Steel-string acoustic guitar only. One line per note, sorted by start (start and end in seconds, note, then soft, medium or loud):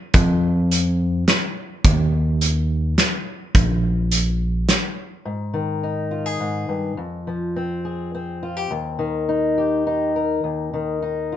5.25 6.39 G#2 medium
5.54 6.98 D#3 soft
5.83 6.95 D#4 soft
6.11 6.26 F4 soft
6.26 6.98 G#4 soft
6.40 6.68 G#2 soft
6.69 6.97 G2 soft
6.97 8.67 F2 soft
7.27 8.68 F3 soft
7.56 8.13 C4 soft
7.85 8.42 G#4 soft
8.15 9.28 C4 soft
8.43 8.57 F4 soft
8.57 8.71 G4 soft
8.71 10.42 D#2 medium
8.99 10.72 D#3 soft
9.29 9.86 D#4 soft
9.58 10.15 G4 soft
9.87 11.02 D#4 soft
10.16 10.41 A#4 soft
10.44 11.37 D#2 soft
10.74 11.37 D#3 soft
11.02 11.37 D#4 soft
11.32 11.37 F4 soft